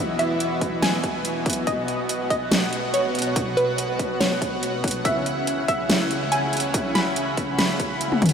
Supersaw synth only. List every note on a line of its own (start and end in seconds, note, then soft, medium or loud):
0.00 1.64 E3 medium
0.00 5.01 B3 medium
0.00 1.64 E4 medium
0.00 1.63 F#4 medium
1.67 5.02 B2 medium
1.67 5.02 F#4 medium
1.67 8.33 F#5 medium
5.05 8.33 C#3 medium
5.05 8.33 C#4 medium
5.05 8.33 E4 medium